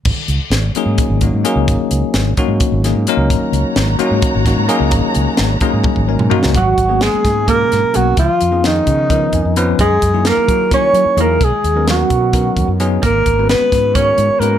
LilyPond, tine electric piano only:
\new Staff \with { instrumentName = "Tine electric piano" } { \time 7/8 \key gis \minor \tempo 4 = 130 << { r2. r8 | r2. r8 | r2. r8 | r2 r8 gis''4 |
r2. r8 | r2 r8 gis''4 | r2. r8 | r2. r8 |
r2. r8 | } \\ { r4. <fis ais cis' dis' gis'>4 <fis ais cis' dis' fis'>8 <fis ais cis' dis' gis'>8~ | <fis ais cis' dis' gis'>4~ <fis ais cis' dis' gis'>16 r16 <fis ais cis' dis' fis'>4 <fis ais cis' dis' gis'>8 <fis ais cis' dis' ais'>8~ | <fis ais cis' dis' ais'>4~ <fis ais cis' dis' ais'>16 r16 <fis ais cis' dis' fis'>4 <fis ais cis' dis' fis'>8 <fis ais cis' dis' gis'>8~ | <fis ais cis' dis' gis'>4~ <fis ais cis' dis' gis'>16 r16 <fis ais cis' dis' gis'>4 <fis ais cis' dis' ais'>8 <fis ais cis' dis' fis'>8 |
r8. <fis ais b cis' gis'>4~ <fis ais b cis' gis'>16 <b, fis ais cis' gis'>4 <fis ais b cis' ais'>8 | r8. <eis b cis' dis' gis'>4~ <eis b cis' dis' gis'>16 <eis b cis' dis' ais'>4 <eis b cis' dis' b'>8 | r8. <fis ais dis' e' gis'>4~ <fis ais dis' e' gis'>16 <fis ais dis' e' ais'>4 <fis ais dis' e' gis'>8 | r8. <fis b cis' dis' ais'>4~ <fis b cis' dis' ais'>16 <fis b cis' dis' ais'>4 <fis b cis' dis' gis'>8 |
r8. <gis b cis' fis' b'>4~ <gis b cis' fis' b'>16 <gis b cis' fis' ais'>4 <gis b cis' fis' b'>8 | } >> }